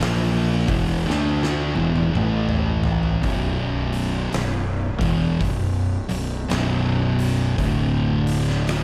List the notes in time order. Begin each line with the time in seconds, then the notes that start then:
0.00 A#1 A#2 F3 A#3, snare, open hi-hat
0.67 E1 E2 B2 E3, kick, open hi-hat
1.06 D3 A3 D4
1.10 D2, snare
1.43 snare
1.74 E1 E2 B2 E3, high tom
1.96 high tom
2.14 A1 A2 E3 A3, mid tom
2.49 mid tom
2.84 floor tom
3.03 floor tom
3.23 B0 B1 F#2 B2, kick, open hi-hat
3.93 open hi-hat
4.32 B0 B1 F#2, snare, open hi-hat
5.01 E1 E2 B2 E3, kick, open hi-hat
5.41 B0 B1 F#2, kick, open hi-hat
6.09 B0 B1 F#2, open hi-hat
6.48 B0 B1 F#2 B2, snare, open hi-hat
7.19 open hi-hat
7.57 D1 D2 A2 D3, kick, open hi-hat
8.27 open hi-hat
8.49 snare
8.67 snare, open hi-hat